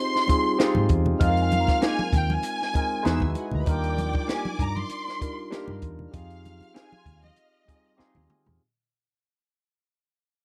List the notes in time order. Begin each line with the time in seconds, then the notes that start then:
Already playing: C4 D#4 F4 G4 G#4 C5 D#5 C6
0.16 snare
0.27 G3 C4 D#4 F4 G#4, kick, closed hi-hat, muted conga
0.58 C4 D#4 F4 G4 G#4, snare, closed hi-hat
0.75 G#2, high conga, low conga
0.89 E2, kick, closed hi-hat, muted conga
1.06 low conga
1.19 F2 G#3 C4 D#4 F4 G#4 F5 F6, kick, closed hi-hat, muted conga
1.29 A#4
1.37 closed hi-hat
1.42 G#5
1.51 closed hi-hat, muted conga, high conga
1.61 A#5
1.67 kick, snare, closed hi-hat, high conga
1.82 A#3 D#4 G#4 G#5, snare, closed hi-hat, muted conga
1.99 high conga
2.13 D#2 G5, kick, closed hi-hat, muted conga, low conga
2.30 G#5, high conga
2.43 closed hi-hat, muted conga
2.62 snare
2.73 G#3 C4 D#4 F4 A#4, kick, closed hi-hat, muted conga
3.03 E2 G#3 B3 D#4 E4 F#4 G#4 B4 E5 E6 F#6, snare, closed hi-hat, muted conga
3.20 D#2, kick, high conga, low conga
3.35 F#4 F#5, closed hi-hat, muted conga
3.45 G#4 G#5
3.51 D2 A#4 A#5, low conga
3.61 B4 B5
3.66 D#2 G3 D4 D#4 F4 A#4 D5 G5 A#5 D6, kick, closed hi-hat, muted conga
3.83 closed hi-hat
3.89 D6
3.98 closed hi-hat, high conga
4.13 kick, high conga
4.28 A#3 D4 G4 G#5, snare, closed hi-hat
4.45 high conga
4.59 G2 A#5, kick, closed hi-hat, muted conga, low conga
4.77 C6, high conga
4.89 closed hi-hat, muted conga
5.08 snare
5.19 G3 D4 D#4 F4 A#4, kick, closed hi-hat
5.50 G3 A#3 D4 D#4 F4 G4 A#4, snare, closed hi-hat, muted conga
5.68 G2, high conga, low conga
5.82 E2, kick, closed hi-hat, muted conga
5.99 low conga
6.11 F2 C4 D#4 F4 G4 G#4 F5 F6, kick, closed hi-hat, muted conga
6.30 closed hi-hat
6.45 closed hi-hat, muted conga, high conga
6.61 closed hi-hat, high conga
6.74 C4 D#4 G#4 G#5, snare, closed hi-hat
6.92 high conga
6.98 C6
7.06 D#2, kick, closed hi-hat, low conga
7.24 D#5, high conga
7.36 closed hi-hat, muted conga
7.65 G3 C4 D#4 F4 G#4, kick, closed hi-hat
7.97 C4 D#4 F4 G4 G#4 F5, muted fingered electric bass stroke, snare
8.15 D#2, high tom, high conga, low conga
8.30 G#5, mid tom, muted conga
8.46 E2, floor tom, low conga